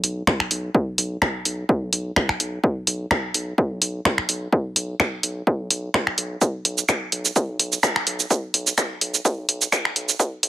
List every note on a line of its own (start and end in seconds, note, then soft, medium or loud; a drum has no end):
0.04 0.22 B1 medium
0.04 open hi-hat medium
0.27 finger snap medium
0.27 kick loud
0.40 finger snap medium
0.51 0.70 B1 medium
0.51 open hi-hat medium
0.75 kick loud
0.98 1.17 B1 loud
0.98 open hi-hat medium
1.22 finger snap loud
1.22 kick loud
1.45 1.64 B1 medium
1.45 open hi-hat medium
1.69 kick loud
1.82 1.90 B1 medium
1.93 2.11 B1 medium
1.93 open hi-hat medium
2.16 finger snap loud
2.16 kick loud
2.29 finger snap medium
2.40 2.59 B1 medium
2.40 open hi-hat medium
2.64 kick loud
2.87 3.06 B1 loud
2.87 open hi-hat medium
3.11 finger snap medium
3.11 kick loud
3.34 3.53 B1 medium
3.34 open hi-hat medium
3.58 kick loud
3.71 3.79 B1 medium
3.82 4.00 B1 medium
3.82 open hi-hat medium
4.05 finger snap medium
4.05 kick loud
4.18 finger snap medium
4.29 4.48 B1 medium
4.29 open hi-hat loud
4.53 kick loud
4.76 4.95 B1 loud
4.76 open hi-hat medium
5.00 finger snap medium
5.00 kick loud
5.23 5.42 B1 medium
5.23 open hi-hat loud
5.47 kick loud
5.60 5.68 B1 medium
5.70 5.89 B1 medium
5.70 open hi-hat medium
5.94 finger snap medium
5.94 kick loud
6.07 finger snap medium
6.18 6.36 B1 medium
6.18 open hi-hat loud
6.41 kick loud
6.41 cabasa soft
6.65 6.84 B1 loud
6.65 open hi-hat medium
6.78 cabasa medium
6.89 finger snap medium
6.89 kick loud
6.89 cabasa soft
7.12 7.31 B1 medium
7.12 open hi-hat medium
7.25 cabasa soft
7.36 kick loud
7.36 cabasa soft
7.49 7.57 B1 medium
7.59 7.78 B1 medium
7.59 open hi-hat medium
7.72 cabasa soft
7.83 finger snap medium
7.83 kick loud
7.83 cabasa soft
7.96 finger snap medium
8.07 8.25 B1 medium
8.07 open hi-hat loud
8.20 cabasa soft
8.30 kick loud
8.30 cabasa soft
8.54 8.73 B1 loud
8.54 open hi-hat medium
8.67 cabasa medium
8.78 finger snap medium
8.78 kick loud
8.78 cabasa soft
9.01 9.20 B1 medium
9.01 open hi-hat medium
9.14 cabasa soft
9.25 kick loud
9.25 cabasa soft
9.38 9.46 B1 medium
9.48 9.67 B1 medium
9.48 open hi-hat medium
9.62 cabasa medium
9.72 finger snap medium
9.72 kick loud
9.72 cabasa soft
9.85 finger snap medium
9.96 10.14 B1 medium
9.96 open hi-hat medium
10.09 cabasa medium
10.20 kick loud
10.20 cabasa soft
10.43 10.49 B1 loud
10.43 open hi-hat medium